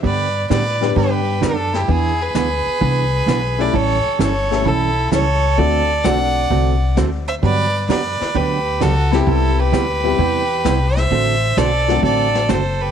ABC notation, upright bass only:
X:1
M:4/4
L:1/8
Q:"Swing" 1/4=130
K:G
V:1 name="Upright bass" clef=bass
G,,2 A,,2 G,,2 F,,2 | E,,2 D,, z C,,2 B,,,2 | A,,, z G,,,2 B,,,2 ^C,,2 | D,,2 B,,,2 C,,2 D,,2 |
G,,2 F,, z D,,2 ^C,,2 | C,,2 D,,2 E,,2 C,,2 | A,,,2 B,,,2 A,,,2 F,,,2 |]